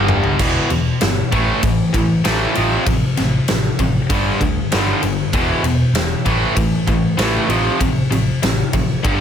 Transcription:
Already playing: picked electric bass G1, distorted electric guitar G2 D3 G3
0.08 mid tom
0.24 floor tom
0.39 picked electric bass E1, distorted electric guitar E2 B2 E3, kick, crash
0.69 picked electric bass E1, distorted electric guitar E2 B2, ride
1.01 picked electric bass G1, distorted electric guitar E2 B2, snare, ride
1.32 picked electric bass A1, distorted electric guitar A2 E3 A3, kick, ride
1.63 picked electric bass A1, distorted electric guitar A2 E3, kick, ride
1.93 picked electric bass A1, distorted electric guitar A2 E3, kick, ride
2.24 picked electric bass A1, distorted electric guitar A2 E3 A3, snare, ride
2.55 picked electric bass A1, distorted electric guitar F2 C3 F3, ride
2.86 picked electric bass A1, distorted electric guitar F2 C3, kick, ride
3.17 picked electric bass A1, distorted electric guitar F2 C3, snare, ride
3.48 picked electric bass A1, distorted electric guitar F2 C3, snare, ride
3.79 picked electric bass A1, distorted electric guitar F2 C3, kick, ride
4.10 picked electric bass G1, distorted electric guitar G2 D3 G3, kick, ride
4.40 picked electric bass D2, distorted electric guitar G2 D3, kick, ride
4.72 picked electric bass G1, distorted electric guitar G2 D3 G3, snare, ride
5.03 picked electric bass G1, distorted electric guitar G2 D3, ride
5.33 picked electric bass E1, distorted electric guitar E2 B2 E3, kick, ride
5.63 picked electric bass E1, distorted electric guitar E2 B2, ride
5.93 picked electric bass E1, distorted electric guitar E2 B2, snare, ride
6.25 picked electric bass A1, distorted electric guitar A2 E3 A3, kick, ride
6.57 picked electric bass A1, distorted electric guitar A2 E3, kick, ride
6.87 picked electric bass A1, distorted electric guitar A2 E3, kick, ride
7.17 picked electric bass A1, distorted electric guitar A2 E3 A3, snare, ride
7.49 picked electric bass A1, distorted electric guitar F2 C3 F3, ride
7.80 picked electric bass A1, distorted electric guitar F2 C3, kick, ride
8.10 picked electric bass A1, distorted electric guitar F2 C3, ride
8.42 picked electric bass A1, distorted electric guitar F2 C3, snare, ride
8.73 picked electric bass A1, distorted electric guitar F2 C3, kick, ride
9.03 picked electric bass G1, distorted electric guitar G2 D3 G3, kick, ride

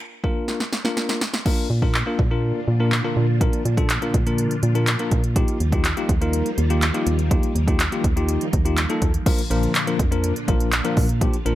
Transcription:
0.24 tine electric piano A#3 D4 F4 A#4, kick
0.48 snare
0.60 snare
0.73 snare
0.85 tine electric piano A#3 D4 F4 A#4, snare
0.97 snare
1.09 snare
1.21 snare
1.34 snare
1.46 string machine A#2 D3 F3 D4 F4, tine electric piano A#3 D4 F4 A#4, kick, crash
1.70 fm bass A#2
1.82 tine electric piano A#3 D4 F4 A#4, kick
1.95 clap
2.06 tine electric piano A#3 D4 F4 A#4
2.19 fm bass A#2, kick
2.31 tine electric piano A#3 D4 F4 A#4
2.68 fm bass A#2
2.80 tine electric piano A#3 D4 F4 A#4
2.92 clap
3.04 tine electric piano A#3 D4 F4 A#4
3.17 fm bass A#2
3.41 tine electric piano A#3 D4 F4 A#4, kick, closed hi-hat
3.53 closed hi-hat
3.65 fm bass A#2, closed hi-hat
3.77 tine electric piano A#3 D4 F4 A4, kick, closed hi-hat
3.90 clap, closed hi-hat
4.02 tine electric piano A#3 D4 F4 A#4, closed hi-hat
4.14 fm bass A#2, kick, closed hi-hat
4.26 tine electric piano A#3 D4 F4 A#4, closed hi-hat
4.38 closed hi-hat
4.51 closed hi-hat
4.63 fm bass A#2, closed hi-hat
4.75 tine electric piano A#3 D4 F4 A#4, closed hi-hat
4.87 clap, closed hi-hat
4.99 tine electric piano A#3 D4 F4 A#4, closed hi-hat
5.11 fm bass A#2, kick, closed hi-hat
5.24 closed hi-hat
5.36 string machine D#3 F3 G3 A#3, tine electric piano A#3 D#4 F4 G4, kick, closed hi-hat
5.48 closed hi-hat
5.60 fm bass D#2, closed hi-hat
5.72 tine electric piano A#3 D#4 F4 G4, kick, closed hi-hat
5.85 clap, closed hi-hat
5.97 tine electric piano A#3 D#4 F4 G4, closed hi-hat
6.09 fm bass D#2, kick, closed hi-hat
6.21 tine electric piano A#3 D#4 F4 A#4, closed hi-hat
6.33 closed hi-hat
6.46 closed hi-hat
6.58 fm bass D#2, closed hi-hat
6.70 tine electric piano A#3 D#4 F4 G4, closed hi-hat
6.82 clap, closed hi-hat
6.94 tine electric piano A#3 D#4 F4 G4, closed hi-hat
7.07 fm bass D#2, closed hi-hat
7.19 closed hi-hat
7.31 tine electric piano A#3 D#4 F4 G4, string machine D#4, kick, closed hi-hat
7.43 closed hi-hat
7.55 fm bass D#2, closed hi-hat
7.68 tine electric piano A#3 D#4 F4 G4, kick, closed hi-hat
7.80 clap, closed hi-hat
7.92 tine electric piano A#3 D#4 F4 G4, closed hi-hat
8.04 fm bass D#2, kick, closed hi-hat
8.16 tine electric piano A#3 D#4 F4 G4, closed hi-hat
8.29 closed hi-hat
8.41 closed hi-hat
8.53 fm bass D#2, kick, closed hi-hat
8.65 tine electric piano A#3 D#4 F4 G4, closed hi-hat
8.77 clap, closed hi-hat
8.90 tine electric piano A#3 D#4 F4 A4, closed hi-hat
9.02 fm bass D#2, kick, closed hi-hat
9.14 closed hi-hat
9.26 string machine A#2 D3 F3 D4 F4, tine electric piano F3 A#3 D4 F4 A#4, kick, closed hi-hat, crash
9.38 closed hi-hat
9.51 fm bass A#1, tine electric piano F3 A#3 D4 F4 A#4, closed hi-hat
9.63 closed hi-hat
9.75 clap, closed hi-hat
9.87 tine electric piano F3 A#3 D4 F4 A#4, closed hi-hat
9.99 fm bass F2, kick, closed hi-hat
10.11 tine electric piano F3 A#3 D4 F4 A#4, closed hi-hat
10.24 closed hi-hat
10.36 closed hi-hat
10.48 fm bass A#1, tine electric piano F3 A#3 D4 F4 A#4, kick, closed hi-hat
10.60 closed hi-hat
10.72 clap, closed hi-hat
10.85 tine electric piano F3 A#3 D4 F4 A#4, closed hi-hat
10.97 fm bass A#2, kick, open hi-hat
11.09 closed hi-hat
11.21 tine electric piano F3 A#3 D4 F4 G4, string machine C4, kick, closed hi-hat
11.33 closed hi-hat
11.45 fm bass A#1, tine electric piano F3 A#3 D4 F4 A#4, closed hi-hat

